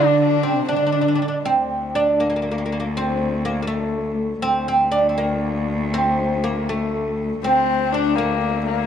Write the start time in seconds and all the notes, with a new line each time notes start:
Already playing: D3 D4
0.21 D4
0.43 C3 C4
0.69 D3 D4
0.76 D4
0.87 D4
0.92 D4
1.01 D4
1.08 D4
1.15 D4
1.22 D4
1.28 D4
1.45 D2 C4
1.95 D4
2.20 A#3
2.30 A#3
2.36 A#3
2.42 A#3
2.51 A#3
2.58 A#3
2.66 A#3
2.72 A#3
2.80 A#3
2.97 C4
3.45 A#3
3.62 A#3
3.67 A3
4.42 D2 C4
4.68 C4
4.92 D4
5.09 C4
5.18 A#3
5.94 C4
6.44 A#3
6.69 A3
7.42 D2 C4
7.92 D4
8.16 A#3
8.65 A#3